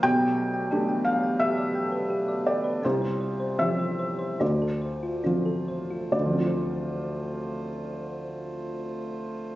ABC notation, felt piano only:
X:1
M:4/4
L:1/8
Q:1/4=72
K:Dm
V:1 name="Felt piano"
g3 f e3 d | c2 e2 d2 z2 | [D,,D,F,CFcd]8 |]
V:2 name="Felt piano"
=B,,,2 [A,DG]6 | C,,2 [F,CG]2 D,,2 [F,CF]2 | z8 |]